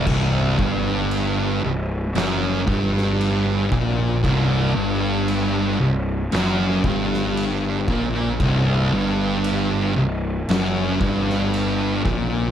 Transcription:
0.07 picked electric bass C1, distorted electric guitar C2, kick, crash
0.59 picked electric bass G1, distorted electric guitar G2, kick
1.11 crash
1.63 picked electric bass C1, distorted electric guitar C2
2.15 picked electric bass F#1, distorted electric guitar F#2, snare, crash
2.67 picked electric bass G1, distorted electric guitar G2, kick
2.97 snare
3.21 crash
3.72 picked electric bass A#1, distorted electric guitar A#2, kick
4.23 picked electric bass C1, distorted electric guitar C2, kick, crash
4.76 picked electric bass G1, distorted electric guitar G2
5.28 crash
5.80 picked electric bass C1, distorted electric guitar C2
6.32 picked electric bass F#1, distorted electric guitar F#2, snare, crash
6.84 picked electric bass G1, distorted electric guitar G2, kick
7.14 snare
7.37 crash
7.88 picked electric bass A#1, distorted electric guitar A#2, kick
8.40 picked electric bass C1, distorted electric guitar C2, kick, crash
8.92 picked electric bass G1, distorted electric guitar G2
9.44 crash
9.96 picked electric bass C1, distorted electric guitar C2
10.48 picked electric bass F#1, distorted electric guitar F#2, snare, crash
11.01 picked electric bass G1, distorted electric guitar G2, kick
11.30 snare
11.54 crash
12.05 picked electric bass A#1, distorted electric guitar A#2, kick

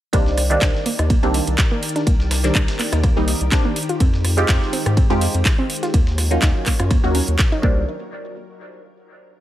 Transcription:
0.13 analog synth bass C2, synth stab D#3 G3 A#3 C4 D4, string machine D#3 G4 A#4 D5, synth arpeggio sound A#3, kick, closed hi-hat, ride
0.26 snare
0.37 cross-stick, open hi-hat, ride
0.50 synth stab D#3 G3 A#3 C4 D4, closed hi-hat
0.62 analog synth bass C2, synth arpeggio sound D4, kick, snare, clap, closed hi-hat, ride
0.75 snare
0.86 synth arpeggio sound A#3, open hi-hat, ride
0.99 analog synth bass D#2, synth arpeggio sound D#4, cross-stick, closed hi-hat
1.10 synth arpeggio sound A#3, kick, closed hi-hat, ride
1.23 analog synth bass C2, synth stab D#3 G3 A#3 C4 D4, synth arpeggio sound G4, ride
1.34 open hi-hat, ride
1.47 analog synth bass C2, closed hi-hat, ride
1.58 kick, snare, clap, closed hi-hat, ride
1.72 synth arpeggio sound A#3
1.83 open hi-hat, ride
1.89 closed hi-hat
1.96 synth arpeggio sound D4, snare, closed hi-hat
2.07 analog synth bass C2, synth arpeggio sound A#3, kick, closed hi-hat, ride
2.20 snare
2.31 cross-stick, snare, open hi-hat, ride
2.43 synth stab D#3 G3 A#3 C4 D4, snare, closed hi-hat
2.55 analog synth bass C2, synth arpeggio sound D4, kick, clap, closed hi-hat, ride
2.68 snare, ride
2.79 synth arpeggio sound A#3, snare, clap, open hi-hat
2.92 analog synth bass D#2, synth arpeggio sound D#4, cross-stick, closed hi-hat, ride
3.04 synth arpeggio sound A#3, kick, cross-stick, closed hi-hat, ride
3.16 analog synth bass C2, synth stab D#3 G3 A#3 C4 D#4, synth arpeggio sound G4
3.28 open hi-hat, ride
3.41 analog synth bass C2, closed hi-hat
3.52 synth stab D#3 G3 A#3 C4 D4, kick, snare, clap, closed hi-hat, ride
3.65 synth arpeggio sound A#3
3.76 string machine G#3 C5, open hi-hat, ride
3.83 closed hi-hat
3.89 synth arpeggio sound F4, closed hi-hat
4.00 analog synth bass F2, synth arpeggio sound C4, kick, closed hi-hat, ride
4.14 snare
4.25 cross-stick, open hi-hat, ride
4.37 synth stab G#3 C4 D#4 F4 G4, closed hi-hat
4.49 analog synth bass F2, synth arpeggio sound F4, kick, snare, clap, closed hi-hat, ride
4.62 snare
4.73 synth arpeggio sound C4, open hi-hat, ride
4.86 analog synth bass G#2, synth arpeggio sound G4, cross-stick, closed hi-hat
4.97 synth arpeggio sound C4, kick, closed hi-hat, ride
5.10 analog synth bass F2, synth stab G#3 C4 D#4 F4 G4, synth arpeggio sound G#4, ride
5.21 open hi-hat, ride
5.34 analog synth bass F2, closed hi-hat, ride
5.45 kick, snare, clap, closed hi-hat, ride
5.59 synth arpeggio sound C4
5.70 open hi-hat, ride
5.76 closed hi-hat
5.83 synth arpeggio sound F4, snare, closed hi-hat
5.94 analog synth bass D#2, string machine F#3 F4 A#4 C#5, synth arpeggio sound A#3, kick, closed hi-hat, ride
6.07 snare
6.18 cross-stick, snare, open hi-hat, ride
6.30 synth stab F#3 A#3 C#4 D#4 F4, closed hi-hat
6.42 analog synth bass D#2, synth arpeggio sound D#4, kick, snare, clap, closed hi-hat, ride
6.66 synth arpeggio sound A#3, kick, clap, open hi-hat, ride
6.80 analog synth bass F#2, synth arpeggio sound F4, cross-stick, closed hi-hat
6.91 synth arpeggio sound A#3, kick, cross-stick, closed hi-hat, ride
7.03 analog synth bass D#2, synth stab F#3 A#3 C#4 D#4 F#4, synth arpeggio sound F#4
7.15 synth arpeggio sound C#4, open hi-hat, ride
7.28 analog synth bass D#2, closed hi-hat
7.39 kick, snare, clap, closed hi-hat, ride
7.52 synth arpeggio sound D#4
7.62 analog synth bass C2, synth stab D#3 G3 A#3 C4 D4, synth arpeggio sound A#3, kick

